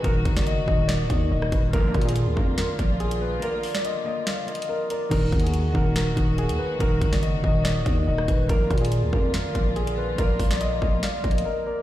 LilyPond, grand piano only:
\new Staff \with { instrumentName = "Grand piano" } { \time 4/4 \key ees \minor \tempo 4 = 142 bes'8. d''16 ees''8 ees''8 d''4 ees''4 | bes'8. aes'8. bes'8 bes'4 aes'8 ces''8 | bes'8. d''16 ees''8 ees''8 d''4 bes'8 bes'8 | bes'8. aes'8. bes'8 bes'4 aes'8 ces''8 |
bes'8. d''16 ees''8 ees''8 d''4 ees''4 | bes'8. aes'8. bes'8 bes'4 aes'8 ces''8 | bes'8. d''16 ees''8 ees''8 d''4 bes'8 bes'8 | }